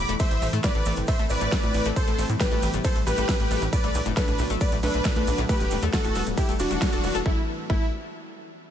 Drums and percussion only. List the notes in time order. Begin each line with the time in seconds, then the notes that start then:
0.09 closed hi-hat, cabasa
0.20 kick, closed hi-hat, ride, cabasa
0.31 closed hi-hat
0.42 open hi-hat, cabasa
0.53 closed hi-hat, cabasa
0.63 kick, snare, closed hi-hat, ride, cabasa
0.75 closed hi-hat
0.85 open hi-hat, cabasa
0.96 closed hi-hat, cabasa
1.07 kick, closed hi-hat, ride, cabasa
1.19 closed hi-hat
1.29 open hi-hat, cabasa
1.41 closed hi-hat, cabasa
1.52 kick, snare, closed hi-hat, ride, cabasa
1.63 closed hi-hat, high conga
1.74 open hi-hat, cabasa
1.85 closed hi-hat, cabasa
1.96 kick, closed hi-hat, ride, cabasa
2.08 closed hi-hat
2.19 open hi-hat, cabasa
2.30 closed hi-hat, cabasa
2.40 kick, snare, closed hi-hat, ride, cabasa
2.52 closed hi-hat, high conga
2.62 open hi-hat, cabasa
2.74 closed hi-hat, cabasa
2.84 kick, closed hi-hat, ride, cabasa
2.96 closed hi-hat
3.07 open hi-hat, cabasa
3.17 closed hi-hat, cabasa
3.29 kick, snare, closed hi-hat, ride, cabasa
3.40 closed hi-hat
3.51 open hi-hat, cabasa
3.62 closed hi-hat, cabasa
3.73 kick, closed hi-hat, ride, cabasa
3.84 closed hi-hat
3.95 open hi-hat, cabasa
4.06 closed hi-hat, cabasa
4.17 kick, snare, closed hi-hat, ride, cabasa
4.28 closed hi-hat
4.38 open hi-hat, cabasa
4.50 closed hi-hat, cabasa
4.61 kick, closed hi-hat, ride, cabasa
4.72 closed hi-hat
4.83 open hi-hat, cabasa
4.94 closed hi-hat, cabasa
5.04 kick, snare, closed hi-hat, ride, cabasa
5.16 closed hi-hat, high conga
5.27 open hi-hat, cabasa
5.38 closed hi-hat, cabasa
5.49 kick, closed hi-hat, ride, high conga, cabasa
5.60 snare, closed hi-hat, cabasa
5.71 open hi-hat, cabasa
5.83 closed hi-hat, cabasa
5.93 kick, snare, closed hi-hat, ride, cabasa
6.04 closed hi-hat, high conga, cabasa
6.15 open hi-hat, cabasa
6.27 closed hi-hat, cabasa
6.37 kick, closed hi-hat, ride, cabasa
6.49 closed hi-hat, cabasa
6.59 open hi-hat, cabasa
6.71 closed hi-hat, cabasa
6.82 kick, snare, closed hi-hat, ride, cabasa
6.92 closed hi-hat, cabasa
7.04 open hi-hat, cabasa
7.15 closed hi-hat, cabasa
7.26 kick
7.70 kick